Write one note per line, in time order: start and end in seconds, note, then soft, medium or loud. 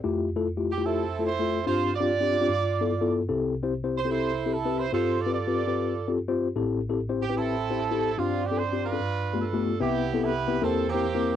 0.04 1.63 F2 medium
0.04 0.28 A3 medium
0.04 0.28 E4 medium
0.04 0.28 F4 medium
0.04 0.28 G4 medium
0.36 0.47 A3 medium
0.36 0.47 E4 medium
0.36 0.47 F4 medium
0.36 0.47 A4 medium
0.57 0.72 A3 medium
0.57 0.72 E4 medium
0.57 0.72 F4 medium
0.57 0.72 G4 medium
0.72 0.85 G4 medium
0.78 1.04 A3 medium
0.78 1.04 E4 medium
0.78 1.04 F4 medium
0.78 1.04 G4 medium
0.86 1.63 C4 medium
0.86 1.25 E4 medium
0.86 1.25 A4 medium
1.19 1.29 A3 medium
1.19 1.29 E4 medium
1.19 1.29 F4 medium
1.19 1.29 A4 medium
1.26 1.64 E4 medium
1.26 1.64 A4 medium
1.26 1.64 C5 medium
1.39 1.58 A3 medium
1.39 1.58 E4 medium
1.39 1.58 F4 medium
1.39 1.58 A4 medium
1.66 2.44 G2 medium
1.66 1.91 C4 medium
1.66 1.90 D4 medium
1.66 1.93 F4 medium
1.66 1.91 F4 medium
1.66 1.91 G4 medium
1.66 1.92 C5 medium
1.94 3.12 F4 medium
1.94 3.17 D5 loud
2.00 2.10 C4 medium
2.00 2.10 D4 medium
2.00 2.10 F4 medium
2.00 2.10 G4 medium
2.21 2.35 C4 medium
2.21 2.36 D4 medium
2.21 2.36 F4 medium
2.21 2.36 G4 medium
2.41 2.48 C4 medium
2.41 2.48 D4 medium
2.41 2.48 F4 medium
2.41 2.48 G4 medium
2.48 3.26 G2 medium
2.81 2.91 B3 medium
2.81 2.91 E4 medium
2.81 2.91 F4 medium
2.81 2.91 A4 medium
3.01 3.21 B3 medium
3.01 3.21 E4 medium
3.01 3.21 F4 medium
3.01 3.21 A4 medium
3.29 4.88 C2 medium
3.29 4.88 C3 medium
3.29 3.53 C4 medium
3.29 3.53 E4 medium
3.29 3.53 G4 medium
3.29 3.53 A4 medium
3.63 3.73 C4 medium
3.63 3.73 E4 medium
3.63 3.73 G4 medium
3.63 3.73 C5 medium
3.84 3.99 C4 medium
3.84 3.99 E4 medium
3.84 3.99 G4 medium
3.84 3.99 C5 medium
3.98 4.11 C5 medium
4.05 4.30 C4 medium
4.05 4.30 E4 medium
4.05 4.30 G4 medium
4.05 4.30 A4 medium
4.12 4.89 E4 medium
4.12 4.51 A4 medium
4.12 4.50 C5 medium
4.46 4.55 C4 medium
4.46 4.55 E4 medium
4.46 4.55 G4 medium
4.46 4.55 A4 medium
4.53 4.79 A4 medium
4.65 4.84 C4 medium
4.65 4.84 E4 medium
4.65 4.84 G4 medium
4.65 4.84 B4 medium
4.79 4.93 C5 medium
4.92 6.51 G2 medium
4.92 5.16 C4 medium
4.92 5.16 F4 medium
4.92 5.31 F4 medium
4.92 5.16 G4 medium
4.92 5.16 A4 medium
4.92 5.32 A4 medium
4.92 5.18 C5 loud
5.20 5.32 D5 loud
5.26 5.36 C4 medium
5.26 5.36 F4 medium
5.26 5.36 G4 medium
5.26 5.36 B4 medium
5.33 6.10 F4 medium
5.33 6.11 A4 medium
5.33 6.11 D5 medium
5.47 5.62 C4 medium
5.47 5.62 F4 medium
5.47 5.62 G4 medium
5.47 5.62 B4 medium
5.67 5.93 C4 medium
5.67 5.93 F4 medium
5.67 5.93 G4 medium
5.67 5.93 B4 medium
6.08 6.18 C4 medium
6.08 6.18 F4 medium
6.08 6.18 G4 medium
6.08 6.18 A4 medium
6.28 6.47 C4 medium
6.28 6.47 F4 medium
6.28 6.47 G4 medium
6.28 6.47 C5 medium
6.56 8.14 A1 medium
6.56 8.14 A2 medium
6.56 6.80 C4 medium
6.56 6.80 E4 medium
6.56 6.79 G4 medium
6.56 6.80 A4 medium
6.89 6.99 C4 medium
6.89 6.99 E4 medium
6.89 6.99 G4 medium
6.89 6.99 A4 medium
7.09 7.24 C4 medium
7.09 7.24 E4 medium
7.09 7.24 G4 medium
7.09 7.24 C5 medium
7.23 7.36 G4 medium
7.29 7.55 C4 medium
7.29 7.55 E4 medium
7.29 7.55 G4 medium
7.29 7.55 B4 medium
7.37 8.15 C4 medium
7.37 8.15 E4 medium
7.37 8.18 A4 loud
7.71 7.80 C4 medium
7.71 7.81 E4 medium
7.71 7.80 G4 medium
7.71 7.81 C5 medium
7.91 8.10 C4 medium
7.91 8.10 E4 medium
7.91 8.10 G4 medium
7.91 8.10 A4 medium
8.18 8.96 G2 medium
8.18 8.42 C4 medium
8.18 8.97 C4 medium
8.18 8.42 D4 medium
8.18 8.85 D4 medium
8.18 8.42 F4 medium
8.18 8.45 F4 medium
8.18 8.42 G4 medium
8.45 8.59 G4 medium
8.52 8.62 C4 medium
8.52 8.62 D4 medium
8.52 8.62 F4 medium
8.52 8.62 A4 medium
8.58 8.85 C5 loud
8.73 8.87 C4 medium
8.73 8.87 D4 medium
8.73 8.87 F4 medium
8.73 8.87 G4 medium
8.84 9.40 D4 medium
8.84 9.40 F4 medium
8.84 9.62 B4 loud
8.92 9.00 C4 medium
8.92 9.00 D4 medium
8.92 9.00 F4 medium
8.92 9.00 A4 medium
9.00 9.77 G2 medium
9.33 9.43 A3 medium
9.33 9.43 B3 medium
9.33 9.43 F4 medium
9.33 9.43 G4 medium
9.41 9.79 D4 medium
9.41 9.79 F4 medium
9.41 9.79 A4 medium
9.53 9.72 A3 medium
9.53 9.72 B3 medium
9.53 9.72 F4 medium
9.53 9.73 G4 medium
9.80 10.58 C2 medium
9.80 10.58 C3 medium
9.80 10.04 B3 medium
9.80 10.58 B3 medium
9.80 10.04 C4 medium
9.80 10.04 E4 medium
9.80 10.22 E4 medium
9.80 10.04 G4 medium
9.80 10.22 G4 loud
9.80 10.04 B4 medium
10.13 10.32 B3 medium
10.13 10.32 C4 medium
10.13 10.31 E4 medium
10.13 10.32 G4 medium
10.13 10.32 A4 medium
10.23 10.60 E4 medium
10.23 10.60 G4 medium
10.23 10.63 B4 medium
10.48 10.56 B3 medium
10.48 10.56 C4 medium
10.48 10.56 E4 medium
10.48 10.56 G4 medium
10.48 10.56 B4 medium
10.62 11.36 E2 medium
10.62 11.36 E3 medium
10.62 10.85 A#3 medium
10.62 10.86 C4 medium
10.62 10.88 C4 medium
10.62 10.85 E4 medium
10.62 10.86 G4 medium
10.62 10.89 A4 medium
10.62 10.86 A#4 medium
10.89 11.36 A#3 medium
10.89 11.36 C4 medium
10.89 11.36 G4 loud
10.94 11.05 A#3 medium
10.94 11.04 C4 medium
10.94 11.04 E4 medium
10.94 11.05 G4 medium
10.94 11.05 A#4 medium
11.15 11.34 A#3 medium
11.15 11.34 C4 medium
11.15 11.34 E4 medium
11.15 11.34 G4 medium
11.15 11.34 A#4 medium